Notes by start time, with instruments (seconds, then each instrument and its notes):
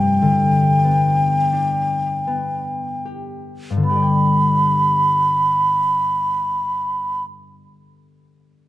Already playing: harp G2 A3 C4, flute G5
0.22 harp D3
0.84 harp B3
1.52 harp D4
2.27 harp B3
3.05 harp G4
3.70 harp G2
3.77 harp D3
3.83 harp B3, flute B5
3.89 harp G4
3.95 harp D5
4.02 harp G5